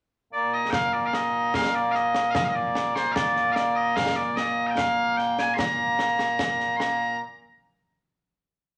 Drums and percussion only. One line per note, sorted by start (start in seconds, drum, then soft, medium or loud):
0.73 concert bass drum medium
0.73 snare loud
1.13 snare medium
1.54 concert bass drum medium
1.54 snare loud
1.95 snare soft
2.15 snare medium
2.35 concert bass drum medium
2.35 snare loud
2.75 snare medium
2.96 snare medium
3.16 concert bass drum medium
3.16 snare medium
3.36 snare soft
3.56 snare medium
3.97 concert bass drum medium
3.97 snare medium
4.37 snare medium
4.78 concert bass drum soft
4.78 snare medium
5.18 snare soft
5.39 snare medium
5.59 concert bass drum medium
5.59 snare loud
5.99 snare medium
6.19 snare medium
6.39 concert bass drum medium
6.39 snare medium
6.60 snare soft
6.80 snare medium